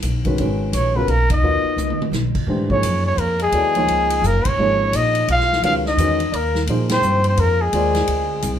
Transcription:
0.02 B1, hi-hat pedal, ride
0.25 D#3 G#3 C#4 F#4 B4, kick, ride
0.38 G#1 D#3 G#3 C#4 F#4 B4, ride
0.73 A#1 C#4 C#5, hi-hat pedal, ride
0.95 C#3 F#3 B3 F4 A#4 B4
1.07 B1 A#3 A#4, ride
1.30 D#4 D#5, kick, ride
1.42 D#2 F#3 B3 F4 A#4 D#5
1.64 muted upright bass stroke
1.76 C#2, hi-hat pedal, mid tom
1.90 mid tom
1.98 muted upright bass stroke, mid tom
2.11 B1, snare, hi-hat pedal
2.35 muted upright bass stroke, kick, crash
2.47 G#2 E3 A3 D4 G4 C5
2.70 F3 A#3 C#4 D#4 G#4 C#5, kick
2.82 F#2, hi-hat pedal, ride
3.05 C#4 C#5
3.17 F2 A#3 A#4, ride
3.39 G#3 G#4, ride
3.52 D#2 F#3 B3 E4 A4 D5, ride
3.75 F3 A#3 D#4 G#4 C#5, ride
3.87 C#2, ride
4.10 ride
4.22 F#1 A#3, hi-hat pedal
4.26 A#4
4.45 C#4 C#5, muted upright bass stroke, kick, ride
4.57 G#1 F3 A#3 D#4 G#4 C#5
4.93 A#1 D#4 D#5, hi-hat pedal, ride
5.15 ride
5.28 B1 F4 F5, ride
5.40 snare
5.52 snare
5.62 C#2 D#3 G#3 C#4 F4 F#4 B4 F5, ride
5.86 D#4 D#5, snare
5.97 E2 D#3 G#3 C#4 F#4 B4, hi-hat pedal, ride
6.20 ride
6.32 D#2 A#3 A#4, ride
6.55 snare
6.67 A#2 F3 A#3 D#4 G#4 C5, ride
6.89 C4 C5, snare, ride
7.02 G2, hi-hat pedal
7.24 C4, ride
7.28 C5
7.37 F2 A#3 A#4, ride
7.62 G#3 G#4
7.73 D#2 G#3 C4 F4 A#4 D5, ride
7.95 snare, ride
8.07 D2, ride
8.42 C2, hi-hat pedal, ride

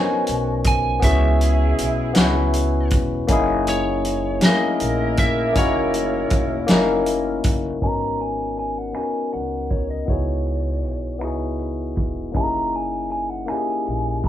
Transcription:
Already playing: F#3 B3 C#4 D#4 F#4 A#4 C5 G#5
0.00 C#5
0.27 B1, closed hi-hat
0.64 G#5, kick, closed hi-hat
1.00 C#2 G#3 B3 C#4 E4 G#4, kick, closed hi-hat
1.04 F#4 G#4 E5
1.41 closed hi-hat
1.78 B1, closed hi-hat
2.13 B3 C#4 E4, snare, closed hi-hat
2.18 C#2 F#4 B4
2.53 closed hi-hat
2.90 E1, kick, closed hi-hat
3.27 F#1 A#3 C#4 D#4 E4, kick, closed hi-hat
3.32 G#4
3.67 C#5, closed hi-hat
4.05 closed hi-hat
4.40 A3 A#3 C#4 D#4 E4 A#4, snare, closed hi-hat
4.44 A#3 E4 G#4 D#5, muted upright bass stroke
4.80 A#1, closed hi-hat
5.17 E5, kick, closed hi-hat
5.53 A#3 C#4 D#4, kick, closed hi-hat
5.57 F#1 E4 F#4 C#5
5.94 closed hi-hat
6.30 E1, kick, closed hi-hat
6.67 A#3 C#4 D#4, snare, closed hi-hat
6.71 F#1 E4 A#4
7.06 closed hi-hat
7.44 F#1, kick, closed hi-hat
7.80 G#1 B3 C#4 D#4 F#4 A#5, kick, closed hi-hat
7.86 A#4
8.20 G#5, closed hi-hat
8.57 G#5, closed hi-hat
8.78 F#5
8.93 B3 C#4 D#4 F#4 G#5, finger snap, closed hi-hat
8.98 A#4, muted upright bass stroke
9.32 C#2 F#5, closed hi-hat
9.70 C#5, kick, closed hi-hat
9.91 D#5
10.05 C#2 B3 D#4 E4 F#4, kick, closed hi-hat
10.10 G#4 C#5
10.46 closed hi-hat
10.84 B1, closed hi-hat
11.19 B3 D#4 E4 F#4, finger snap, closed hi-hat
11.24 C#2 G#4
11.59 closed hi-hat
11.96 E1, kick, closed hi-hat
12.32 A#3 C#4 D#4 E4, kick, closed hi-hat
12.36 F#1 G4 A#5
12.44 G#4
12.73 G#5, closed hi-hat
13.10 G#5, closed hi-hat
13.30 F#5
13.46 A#3 C#4 D#4 G#5, finger snap, closed hi-hat
13.50 E4 G4, muted upright bass stroke
13.58 G#4
13.86 A#1, closed hi-hat
14.23 kick, closed hi-hat

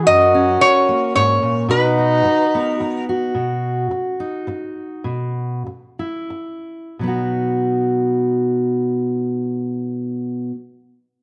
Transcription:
0.04 F#2 F#4 A#4 D#5
0.34 C#4
0.61 C#5, muted steel-string acoustic guitar stroke
0.89 A#3
1.15 G#2 C#5
1.42 A#2
1.68 B2 D#4 F#4 B4
1.99 D#4
2.25 muted steel-string acoustic guitar stroke
2.55 B3 A#4
2.80 muted steel-string acoustic guitar stroke
3.09 F#4
3.35 B2
3.91 muted steel-string acoustic guitar stroke
4.20 D#4
4.47 muted steel-string acoustic guitar stroke
5.04 B2
5.67 muted steel-string acoustic guitar stroke
5.99 E4
6.30 muted steel-string acoustic guitar stroke
6.99 B2 F#3
7.03 B3 D#4
7.08 F#4

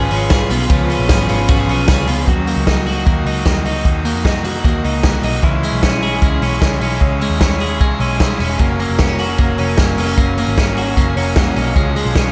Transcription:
Already playing: C#3 F3 G#3 C#4 F4 G#4 B4
0.11 G#1 G#3 C#4 F4 B4, open hi-hat
0.30 G#3 C#4 F4 G#4 B4, kick, snare, hi-hat pedal, ride, tambourine
0.50 B1 G#3 B3 C#4 F4 B4, open hi-hat, tambourine
0.69 C#2 C#3 F3 G#3 C#4 F4 B4, kick, hi-hat pedal, ride, tambourine
0.89 G#3 C#4 F4 B4, open hi-hat, tambourine
0.99 A#1
1.08 G#1 G#3 C#4 F4 G#4 B4, kick, snare, hi-hat pedal, ride, tambourine
1.27 G#1 G#3 C#4 F4 B4, open hi-hat, tambourine
1.48 G#1 C#3 F3 G#3 C#4 F4 F#4 B4, kick, hi-hat pedal, ride, tambourine
1.60 G#4
1.68 B1 G#3 C#4 F4 B4, open hi-hat, tambourine
1.86 C#2 G#3 C#4 F4 G#4 B4, kick, snare, hi-hat pedal, ride, tambourine
2.07 C#2 G#3 B3 C#4 F4 B4, open hi-hat, tambourine
2.27 D#2 D#3 F#3 A#3 D#4 F#4, kick, closed hi-hat
2.46 A#3 D#4 F#4, open hi-hat
2.56 C#2
2.66 D#3 A#3 D#4 F#4, kick, snare, closed hi-hat
2.86 A#3 D#4 F#4, open hi-hat
3.05 D#2 D#3 A#3 D#4 F#4, kick, closed hi-hat
3.25 C#2 A#3 D#4 F#4, open hi-hat
3.45 D#2 D#3 A#3 D#4 F#4, kick, snare, closed hi-hat
3.64 C#2 A#3 D#4 F#4, open hi-hat
3.85 D#2 D#3 A#3 D#4 F#4, kick, closed hi-hat
4.04 A#3 D#4 F#4, open hi-hat
4.15 F2
4.24 D#3 A#3 D#4 F#4, kick, snare
4.44 A#3 D#4 F#4, open hi-hat
4.64 D#2 D#3 A#3 D#4 F#4, kick, closed hi-hat
4.84 C#2 A#3 D#4 F#4, open hi-hat
5.03 D#3 A#3 D#4 F#4, kick, snare, closed hi-hat
5.23 B1 A#3 D#4 F#4, open hi-hat
5.43 C#2 C#3 E3 G#3 C#4 E4, kick, closed hi-hat
5.63 G#3 C#4 E4, open hi-hat
5.72 B1
5.82 C#3 G#3 C#4 E4, kick, snare, closed hi-hat
6.01 G#3 C#4 E4 G#4, open hi-hat
6.21 C#2 C#3 G#3 C#4 E4, kick, closed hi-hat
6.41 B1 G#3 C#4 E4, open hi-hat
6.59 C#2 C#3 G#3 C#4 E4, kick, snare, closed hi-hat
6.80 B1 G#3 C#4 E4, open hi-hat
7.00 C#2 C#3 G#3 C#4 E4, kick, closed hi-hat
7.19 G#3 C#4 E4, open hi-hat
7.30 D#2
7.39 C#3 G#3 C#4 E4, kick, snare, closed hi-hat
7.59 G#3 C#4 E4 G#4, open hi-hat
7.79 C#2 C#3 G#3 C#4 E4, kick, closed hi-hat
7.99 B1 G#3 C#4 E4, open hi-hat
8.19 C#3 G#3 C#4 E4, kick, snare, closed hi-hat
8.38 E1 G#3 C#4 E4, open hi-hat
8.59 F#1 F#2 C#3 F#3 A#3 C#4 F#4 A#4, kick, closed hi-hat
8.79 F#3 A#3 C#4, open hi-hat
8.89 F1
8.99 C#3 F#3 A#3 B3 C#4, kick, snare, closed hi-hat
9.09 C#4
9.18 F#3 A#3 C#4 F#4, open hi-hat
9.38 F#1 F#2 C#3 F#3 A#3 C#4, kick, closed hi-hat
9.58 F1 F#3 A#3 C#4, open hi-hat
9.77 F#1 C#3 F#3 A#3 C#4, kick, snare, closed hi-hat
9.97 F1 F#3 A#3 B3 C#4, open hi-hat
10.08 C#4
10.17 F#1 F#2 C#3 F#3 A#3 C#4, kick, closed hi-hat
10.37 F#3 A#3 C#4, open hi-hat
10.47 G#1
10.56 C#3 F#3 A#3 C#4, kick, snare, closed hi-hat
10.76 F#3 A#3 C#4 F#4, open hi-hat
10.95 F#1 F#2 C#3 F#3 A#3 C#4, kick, closed hi-hat
11.16 F1 F#3 A#3 C#4 A#5, open hi-hat
11.36 C#3 F#3 A#3 C#4 F#5, kick, snare, closed hi-hat
11.55 B1 F#3 A#3 C#4 D#5, open hi-hat
11.76 C#2 C#3 F3 G#3 C#4 F4 G#4, kick, closed hi-hat
11.95 F3 G#3 C#4, open hi-hat
12.05 B1
12.15 C#3 F3 G#3 C#4, kick, snare, closed hi-hat

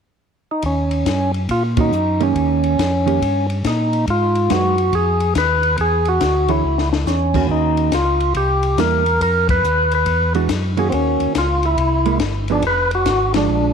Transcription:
0.51 D#4
0.62 D#2 C#4, kick, ride
0.91 ride
1.06 F#2, kick, snare, hi-hat pedal, ride
1.34 ride
1.49 A#2 F4, kick, ride
1.77 D#3 A#3 C#4 D#4 F#4, kick, ride
1.91 F#2, hi-hat pedal
2.20 D#3 A#3 C#4 G4, ride
2.35 D#2, kick, ride
2.64 ride
2.79 F2, kick, snare, hi-hat pedal, ride
3.06 D#3 A#3 C#4 G4, ride
3.21 G2, kick, ride
3.50 ride
3.64 A#2 D#4, kick, snare, hi-hat pedal, ride
3.93 ride
4.07 G#2 F4, kick, ride
4.35 ride
4.50 F#2 G#3 D#4 F#4 B4, kick, snare, hi-hat pedal, ride
4.78 ride
4.93 F2 G#4, kick, ride
5.20 ride
5.35 D#2 B4, kick, snare, hi-hat pedal, ride
5.63 ride
5.78 E2 G#4, kick, ride
6.05 F#4, ride
6.21 D2, kick, snare, hi-hat pedal, ride
6.48 E3 D4 E4 G#4 C#5, ride
6.64 C#2
6.78 snare
6.93 snare
7.06 E2 C#4, snare, hi-hat pedal
7.34 D#3 A#3 C#4 F#4, kick, crash
7.49 D#2 D#4, kick
7.77 ride
7.92 C#2 F4, kick, snare, hi-hat pedal, ride
8.20 ride
8.35 C2 G4, kick, ride
8.63 ride
8.78 E2 G3 A#3 E4 A#4, kick, snare, hi-hat pedal, ride
9.06 ride
9.20 F2 A#4, kick, ride
9.49 B4, kick, ride
9.63 D#2, hi-hat pedal
9.92 B4, ride
10.06 E2, kick, ride
10.35 E3 G#3 D4 F#4, ride
10.49 F#2, kick, snare, hi-hat pedal, ride
10.77 D#3 A#3 C#4 F#4 G#4, ride
10.90 D#2 C4, kick, ride
10.94 C#4
11.20 D#2, ride
11.35 C#2 F4, kick, snare, hi-hat pedal, ride
11.63 E4, ride
11.77 C2, kick, ride
12.06 G#3 A#3 E4, ride
12.20 G1, kick, snare, hi-hat pedal, ride
12.48 F3 B3 D#4 G#4, ride
12.52 D4
12.62 F1, kick, ride
12.67 B4
12.91 F#4, ride
13.06 G#1, kick, snare, hi-hat pedal, ride
13.34 F3 G#3 D4, snare, ride
13.48 A#1

